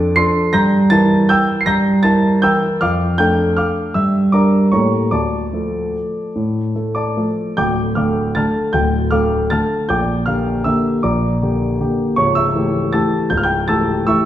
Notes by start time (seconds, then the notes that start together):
Already playing: F2 D4 A4 D6 A6 D7
0.16 F3 D4 A4 C6 C7
0.53 G2 A#5 G6 A#6
0.90 E3 E4 A#4 A5 A6
1.29 G5 E6 G6
1.61 C7
1.66 G2 A#5 G6 A#6
2.03 E4 A#4 A5 A6
2.42 E3 E4 A#4 G5 E6 G6
2.81 F2 F5 D6 F6
3.18 A3 D4 A4 G5 G6
3.57 F5 D6 F6
3.94 G2 E5 E6
4.32 G3 D4 A#4 D5 A#5 D6
4.72 A2 G3 A#3 A4 C#5 A#5 C#6
5.11 D2 D5 A5 D6
5.53 F3 A3 A4
6.36 A2
6.75 A3 A4
6.95 D5 A5 D6
7.17 F3 A3 A4
7.57 D1 D2 G5 D6 G6
7.95 D3 A3 A4 F5 D6 F6
8.35 D3 A3 A4 A5 F6 A6
8.73 D1 D2 G5 G6
9.11 D3 A3 A4 F5 D6 F6
9.50 D3 A3 A4 A5 F6 A6
9.89 A#1 A#2 G5 D6 G6
10.26 D3 A#3 G4 F5 F6
10.64 D3 A#3 G4 E5 E6
11.03 A#1 A#2 D5 A#5 D6
11.42 D3 A#3 G4
11.80 D3 A#3 G4
12.16 C#1 C#2 C#5 C#6
12.35 E5 C#6 E6
12.55 E3 A3 G4
12.93 E3 A3 G4 A5 E6 A6
13.30 C#1 C#2 G6
13.37 F6
13.43 G5 G6
13.68 E3 A3 G4 A5 E6 A6
14.07 E3 A3 G4 E5 C#6 E6